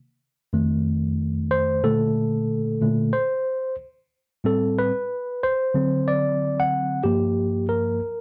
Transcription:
0.53 1.79 F2 medium
0.53 1.80 D#3 medium
0.53 1.80 A3 medium
1.51 1.85 C5 loud
1.84 2.80 A#2 medium
1.84 2.81 D3 medium
1.84 2.81 A3 medium
1.84 3.18 A4 medium
2.81 3.11 A#2 medium
2.81 3.11 D3 soft
2.81 3.11 A3 medium
3.13 3.75 C5 medium
4.44 4.90 A2 medium
4.44 4.90 G3 medium
4.44 4.91 C4 medium
4.44 4.79 A4 medium
4.79 5.45 B4 medium
5.43 6.10 C5 loud
5.74 7.01 D3 medium
5.74 7.01 F#3 medium
5.74 7.02 C4 medium
6.08 6.61 D5 medium
6.60 7.02 F#5 loud
7.04 7.99 G2 soft
7.04 7.99 F3 medium
7.04 7.99 A#3 medium
7.04 7.66 G4 medium
7.69 8.21 A#4 medium

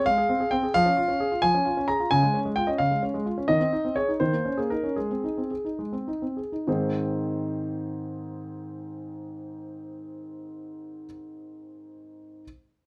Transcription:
0.06 0.17 G#3 medium
0.06 0.51 F5 loud
0.18 0.29 G#4 soft
0.29 0.41 C4 medium
0.40 0.52 G#4 soft
0.51 0.63 C4 medium
0.51 0.74 G5 medium
0.63 0.74 G#4 soft
0.74 0.85 F3 medium
0.74 1.42 F5 loud
0.86 0.97 C#4 soft
0.97 1.09 F4 medium
1.08 1.20 C#4 soft
1.20 1.32 G#4 medium
1.32 1.43 F4 soft
1.42 1.54 F3 medium
1.42 1.88 G#5 loud
1.55 1.66 C#4 soft
1.65 1.77 F4 soft
1.77 1.89 C#4 soft
1.88 2.00 G#4 soft
1.88 2.11 A#5 medium
2.00 2.11 F4 soft
2.11 2.22 C#3 medium
2.11 2.38 G#5 medium
2.23 2.34 G#3 soft
2.34 2.46 C#4 soft
2.45 2.57 G#3 soft
2.56 2.69 F4 medium
2.56 2.68 G5 medium
2.67 2.80 C#4 soft
2.67 2.79 D#5 medium
2.78 2.91 C#3 soft
2.78 3.02 F5 medium
2.91 3.03 G#3 soft
3.03 3.15 C#4 soft
3.14 3.26 G#3 soft
3.26 3.38 F4 soft
3.38 3.49 C#4 soft
3.48 3.60 D#3 medium
3.48 3.96 D#5 medium
3.60 3.73 C4 soft
3.73 3.85 D#4 soft
3.85 3.97 C4 soft
3.96 4.09 G#4 soft
3.96 4.11 C#5 medium
4.08 4.21 D#4 soft
4.20 4.33 D#3 soft
4.20 4.58 C5 medium
4.33 4.46 A#3 soft
4.45 4.59 C#4 soft
4.57 4.72 A#3 soft
4.57 4.71 G#4 soft
4.70 4.85 D#4 soft
4.70 4.97 A#4 medium
4.84 4.97 C#4 soft
4.96 5.10 G#3 soft
4.96 5.50 G#4 medium
5.11 5.25 C4 soft
5.24 5.38 D#4 soft
5.38 5.52 C4 soft
5.51 5.66 G#4 soft
5.65 5.80 D#4 soft
5.79 5.93 G#3 soft
5.92 6.08 C4 soft
6.07 6.23 D#4 soft
6.22 6.38 C4 soft
6.37 6.53 G#4 soft
6.52 6.67 D#4 soft
6.67 11.05 G#2 soft
6.67 11.05 D#3 soft
6.67 11.05 C4 soft
6.67 11.05 D#4 soft
6.67 11.06 G#4 soft
6.67 11.06 C5 soft

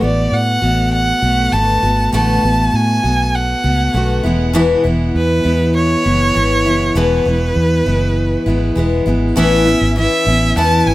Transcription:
0.01 0.27 A1 medium
0.01 0.63 A3 soft
0.01 0.63 B3 soft
0.01 0.60 F#4 soft
0.01 0.35 D5 medium
0.32 0.57 A2 loud
0.32 0.93 F#5 medium
0.62 1.12 A1 medium
0.62 1.24 A3 soft
0.62 1.24 B3 soft
0.62 1.21 F#4 soft
0.94 1.55 F#5 medium
1.22 1.47 B1 medium
1.22 1.52 A3 soft
1.22 1.54 B3 soft
1.22 1.53 F#4 soft
1.52 1.77 G#1 medium
1.52 1.83 D3 soft
1.52 1.84 A3 medium
1.52 1.83 B3 medium
1.52 1.81 F#4 medium
1.52 2.14 A5 medium
1.83 2.08 G#1 medium
1.83 2.13 A3 soft
1.83 2.13 B3 soft
1.83 2.13 F#4 soft
2.13 2.38 A1 medium
2.13 2.43 A2 medium
2.13 2.44 D3 medium
2.13 2.44 A3 medium
2.13 2.43 B3 medium
2.13 2.41 F#4 medium
2.13 2.77 A5 medium
2.42 2.68 A1 medium
2.42 3.05 A3 soft
2.42 3.05 B3 soft
2.42 3.02 F#4 soft
2.73 2.98 A2 medium
2.73 3.37 G#5 medium
3.03 3.54 B1 medium
3.03 3.66 A3 soft
3.03 3.65 B3 soft
3.03 3.62 F#4 soft
3.35 4.25 F#5 medium
3.64 3.89 C#2 medium
3.64 3.93 A3 soft
3.64 3.95 B3 soft
3.64 3.94 F#4 soft
3.93 4.19 B1 medium
3.93 4.24 D3 soft
3.93 4.25 A3 medium
3.93 4.23 B3 medium
3.93 4.23 F#4 medium
4.23 4.74 E1 medium
4.23 4.53 E3 soft
4.23 4.54 G#3 soft
4.23 4.54 B3 soft
4.23 4.54 E4 medium
4.53 4.84 E2 medium
4.53 4.84 B2 medium
4.53 4.85 E3 medium
4.53 4.85 G#3 medium
4.53 4.84 B3 medium
4.53 4.82 E4 loud
4.84 5.10 E1 medium
4.84 5.47 E3 soft
4.84 5.45 G#3 soft
4.84 5.45 B3 soft
4.84 5.43 E4 medium
5.15 5.40 E2 loud
5.15 5.72 B4 medium
5.44 5.95 E2 medium
5.44 6.07 E3 soft
5.44 6.06 G#3 soft
5.44 6.05 B3 soft
5.44 6.04 E4 medium
5.76 6.99 C#5 loud
6.04 6.30 F#1 medium
6.04 6.33 E3 soft
6.04 6.34 G#3 soft
6.04 6.35 B3 soft
6.04 6.35 E4 soft
6.34 6.66 G#1 medium
6.34 6.65 E3 medium
6.34 6.66 G#3 medium
6.34 6.65 B3 medium
6.34 6.64 E4 medium
6.65 6.90 F#1 medium
6.65 6.95 E3 soft
6.65 6.95 G#3 soft
6.65 6.96 B3 medium
6.65 6.96 E4 medium
6.95 7.20 E1 medium
6.95 7.26 E2 medium
6.95 7.26 B2 medium
6.95 7.26 E3 medium
6.95 7.26 G#3 medium
6.95 7.25 B3 medium
6.95 7.24 E4 medium
6.95 8.77 B4 medium
7.25 7.51 E1 medium
7.25 7.89 E3 soft
7.25 7.87 G#3 soft
7.25 7.87 B3 soft
7.25 7.86 E4 soft
7.56 7.81 E2 medium
7.86 8.35 F#1 medium
7.86 8.49 E3 soft
7.86 8.47 G#3 soft
7.86 8.47 B3 soft
7.86 8.46 E4 medium
8.46 8.71 G#1 medium
8.46 8.74 E3 soft
8.46 8.76 G#3 soft
8.46 8.77 B3 soft
8.46 8.76 E4 medium
8.76 9.01 E1 medium
8.76 9.06 E3 medium
8.76 9.07 G#3 medium
8.76 9.06 B3 medium
8.76 9.04 E4 medium
9.06 9.31 G#1 medium
9.06 9.36 E3 soft
9.06 9.36 G#3 soft
9.06 9.36 B3 medium
9.06 9.36 E4 medium
9.36 9.74 A1 medium
9.36 9.66 A2 medium
9.36 9.67 E3 loud
9.36 9.67 B3 medium
9.36 9.66 C#4 medium
9.36 9.64 E4 loud
9.36 9.94 E5 medium
9.65 9.96 B3 soft
9.65 9.97 C#4 medium
9.65 9.96 E4 medium
9.81 10.06 G#1 medium
9.96 10.26 E3 medium
9.96 10.27 B3 medium
9.96 10.27 C#4 medium
9.96 10.25 E4 medium
9.96 10.54 E5 medium
10.26 10.51 A1 loud
10.26 10.57 B3 soft
10.26 10.57 C#4 soft
10.26 10.57 E4 soft
10.57 10.81 E2 loud
10.57 10.94 E3 medium
10.57 10.94 B3 medium
10.57 10.94 C#4 medium
10.57 10.94 E4 loud
10.57 10.89 A5 loud
10.86 10.94 G#1 medium
10.86 10.94 G#5 medium

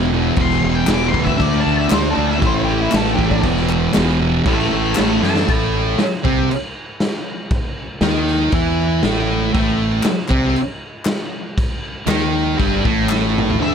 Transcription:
0.00 0.30 E1 medium
0.00 0.11 E2 loud
0.00 0.12 B2 loud
0.00 0.12 E3 loud
0.13 0.37 E2 medium
0.13 0.39 B2 loud
0.13 0.38 E3 loud
0.36 0.59 E1 medium
0.36 0.86 E2 medium
0.36 0.87 B2 loud
0.36 0.87 E3 loud
0.36 kick loud
0.36 crash medium
0.42 0.73 C6 loud
0.50 snare soft
0.63 0.85 E1 loud
0.75 0.90 G5 medium
0.87 1.09 E1 loud
0.87 1.12 E2 medium
0.87 1.12 B2 loud
0.87 1.12 E3 loud
0.87 snare loud
0.87 clap loud
0.87 crash medium
0.94 1.08 D6 loud
1.08 1.24 C6 medium
1.13 1.36 D2 loud
1.13 1.37 E2 medium
1.13 1.38 B2 loud
1.13 1.38 E3 medium
1.13 kick medium
1.24 1.42 E5 medium
1.24 kick medium
1.38 1.61 D2 loud
1.38 1.88 D3 loud
1.38 1.89 A3 loud
1.38 1.89 D4 loud
1.38 1.57 D5 loud
1.38 kick loud
1.38 crash medium
1.61 1.75 A5 medium
1.66 1.88 D2 loud
1.79 1.93 E5 loud
1.89 2.13 D2 medium
1.89 2.13 D3 medium
1.89 2.14 A3 loud
1.89 2.14 D4 loud
1.89 2.08 C5 medium
1.89 snare loud
1.89 clap loud
1.89 crash medium
2.11 2.39 D3 medium
2.11 2.26 A4 medium
2.15 2.38 D2 loud
2.15 2.39 A3 medium
2.15 2.39 D4 loud
2.31 2.44 E5 medium
2.40 2.85 A1 loud
2.40 2.90 A2 medium
2.40 2.92 E3 loud
2.40 2.92 A3 loud
2.40 kick loud
2.40 crash medium
2.46 2.60 C5 loud
2.64 2.78 G4 medium
2.82 2.95 E4 loud
2.92 3.15 A1 medium
2.92 3.15 A2 medium
2.92 3.17 E3 loud
2.92 3.16 A3 loud
2.92 3.10 A4 loud
2.92 snare loud
2.92 clap loud
2.92 crash medium
3.13 3.41 A2 medium
3.13 3.43 E3 medium
3.13 3.41 A3 loud
3.13 3.28 G4 medium
3.19 3.40 A1 loud
3.19 kick medium
3.31 3.45 D4 medium
3.31 kick medium
3.42 3.87 E1 loud
3.42 3.92 E2 loud
3.42 3.93 B2 loud
3.42 3.93 E3 loud
3.42 kick loud
3.42 crash medium
3.56 snare soft
3.69 clap medium
3.93 4.39 E1 loud
3.93 4.19 E2 medium
3.93 4.20 B2 medium
3.93 4.20 E3 loud
3.93 snare loud
3.93 clap loud
3.93 crash medium
4.20 4.44 E2 medium
4.20 4.44 B2 medium
4.20 4.44 E3 medium
4.46 4.67 A1 loud
4.46 4.96 A2 medium
4.46 4.96 E3 loud
4.46 4.96 A3 loud
4.46 4.72 E5 medium
4.46 4.71 A5 loud
4.46 kick loud
4.46 crash medium
4.59 snare soft
4.72 4.93 A1 medium
4.72 4.95 E5 medium
4.72 4.96 A5 medium
4.95 5.19 A1 medium
4.95 5.20 A2 medium
4.95 5.21 E3 medium
4.95 5.22 A3 medium
4.95 snare loud
4.95 clap loud
4.95 crash medium
5.01 5.22 E5 medium
5.01 5.23 A5 loud
5.21 5.44 F#2 loud
5.21 5.45 A2 medium
5.21 5.46 E3 medium
5.21 5.46 A3 medium
5.21 5.48 A5 loud
5.21 snare medium
5.36 snare medium
5.49 5.95 A1 loud
5.49 5.98 A2 loud
5.49 5.99 A3 loud
5.49 kick loud
5.49 crash medium
5.99 muted fingered electric bass stroke soft
5.99 muted distorted electric guitar stroke medium
5.99 snare loud
5.99 crash medium
6.24 6.48 C2 medium
6.24 6.48 C3 medium
6.24 6.49 C4 loud
6.24 kick loud
6.51 crash medium
7.00 snare loud
7.00 crash medium
7.51 kick loud
7.51 crash medium
8.01 8.48 D#2 loud
8.01 8.52 D#3 medium
8.01 8.52 D#4 loud
8.01 snare loud
8.01 crash medium
8.28 snare soft
8.52 9.00 E2 medium
8.52 9.03 E3 medium
8.52 9.04 E4 medium
8.52 kick loud
8.52 crash medium
9.03 9.51 A1 medium
9.03 9.52 A2 medium
9.03 9.52 A3 loud
9.03 snare loud
9.03 crash medium
9.53 10.02 A1 loud
9.53 10.04 A2 loud
9.53 10.04 A3 loud
9.53 kick loud
9.53 crash medium
10.03 muted fingered electric bass stroke soft
10.03 muted distorted electric guitar stroke medium
10.03 snare loud
10.03 clap loud
10.03 crash medium
10.28 10.55 C2 medium
10.28 10.54 C3 loud
10.28 10.55 C4 loud
10.28 kick loud
10.28 clap medium
10.56 crash medium
11.05 snare loud
11.05 clap loud
11.05 crash medium
11.58 kick loud
11.58 crash medium
12.07 12.55 D#2 loud
12.07 12.58 D#3 loud
12.07 12.58 D#4 loud
12.07 snare loud
12.07 clap medium
12.07 crash medium
12.57 12.83 G1 loud
12.57 12.83 G2 loud
12.57 12.83 G3 loud
12.57 kick loud
12.57 crash medium
12.84 13.57 A1 medium
12.84 13.60 A2 medium
12.84 13.60 A3 loud
12.84 kick loud
13.09 snare medium
13.09 clap loud
13.38 mid tom loud
13.50 floor tom medium
13.60 13.75 D3 loud
13.60 13.75 A3 loud
13.60 13.75 D4 loud
13.60 13.75 E5 loud

